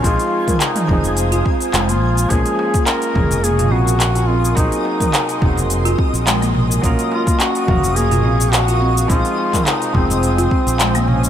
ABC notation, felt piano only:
X:1
M:4/4
L:1/8
Q:"Swing 16ths" 1/4=106
K:Fphr
V:1 name="Felt piano"
[F,A,CEA]3 [F,A,CEA]4- [F,A,CEA] | [F,A,B,DA]3 [D,A,B,A]4- [D,A,B,A] | [G,B,CEA]3 [G,B,CEA]4- [G,B,CEA] | [G,B,DFB]3 [G,B,Bf]4- [G,B,Bf] |
[F,A,CEA]3 [F,A,CEA]4- [F,A,CEA] |]